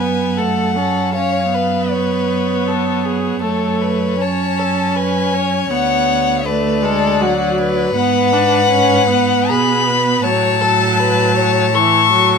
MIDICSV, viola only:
0, 0, Header, 1, 2, 480
1, 0, Start_track
1, 0, Key_signature, 3, "minor"
1, 0, Tempo, 771208
1, 719, Time_signature, 3, 2, 24, 8
1, 1198, Tempo, 747198
1, 2158, Tempo, 794702
1, 2638, Tempo, 749064
1, 5518, Tempo, 793651
1, 5998, Tempo, 750000
1, 7841, End_track
2, 0, Start_track
2, 0, Title_t, "Viola"
2, 0, Program_c, 0, 41
2, 0, Note_on_c, 0, 59, 39
2, 238, Note_on_c, 0, 57, 38
2, 248, Note_off_c, 0, 59, 0
2, 474, Note_on_c, 0, 61, 38
2, 484, Note_off_c, 0, 57, 0
2, 717, Note_off_c, 0, 61, 0
2, 720, Note_on_c, 0, 61, 37
2, 953, Note_off_c, 0, 61, 0
2, 957, Note_on_c, 0, 59, 41
2, 2156, Note_on_c, 0, 57, 41
2, 2165, Note_off_c, 0, 59, 0
2, 2632, Note_off_c, 0, 57, 0
2, 2635, Note_on_c, 0, 61, 48
2, 3594, Note_on_c, 0, 59, 41
2, 3604, Note_off_c, 0, 61, 0
2, 4074, Note_off_c, 0, 59, 0
2, 4078, Note_on_c, 0, 57, 52
2, 4310, Note_on_c, 0, 56, 52
2, 4320, Note_off_c, 0, 57, 0
2, 4557, Note_on_c, 0, 54, 50
2, 4567, Note_off_c, 0, 56, 0
2, 5030, Note_off_c, 0, 54, 0
2, 5033, Note_on_c, 0, 59, 51
2, 5276, Note_on_c, 0, 62, 52
2, 5285, Note_off_c, 0, 59, 0
2, 5509, Note_off_c, 0, 62, 0
2, 5513, Note_on_c, 0, 61, 63
2, 5752, Note_off_c, 0, 61, 0
2, 5761, Note_on_c, 0, 59, 53
2, 6479, Note_on_c, 0, 54, 53
2, 6488, Note_off_c, 0, 59, 0
2, 6710, Note_off_c, 0, 54, 0
2, 6713, Note_on_c, 0, 54, 59
2, 7419, Note_off_c, 0, 54, 0
2, 7435, Note_on_c, 0, 52, 55
2, 7670, Note_off_c, 0, 52, 0
2, 7674, Note_on_c, 0, 54, 56
2, 7841, Note_off_c, 0, 54, 0
2, 7841, End_track
0, 0, End_of_file